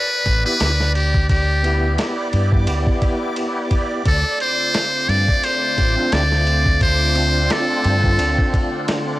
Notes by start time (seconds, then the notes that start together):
Already playing: B4 D5
0.26 A1, kick, ride
0.45 B3 E4 G4 B4
0.60 D2, snare, ride
0.80 snare
0.95 G4, ride
1.14 kick
1.29 G4, kick, ride
1.63 B3 E4 G4, ride
1.98 snare, ride
2.33 G2, ride
2.52 kick
2.67 D2, ride
2.87 kick
3.02 kick, ride
3.36 ride
3.71 kick, ride
4.05 D2 D3 A3 C4 F4 A4, kick, ride
4.40 C5, ride
4.74 snare, ride
5.09 G2 D5, ride
5.28 kick
5.43 C5, ride
5.78 A1, kick, ride
5.96 C4 D4 F4
6.12 D2 D5, snare, ride
6.32 snare
6.47 ride
6.66 kick
6.81 C5, kick, ride
7.15 C4 D4 F4, ride
7.50 A4, snare, ride
7.84 G2, ride
8.04 kick
8.19 D2, ride
8.38 kick
8.54 kick, ride
8.88 snare, ride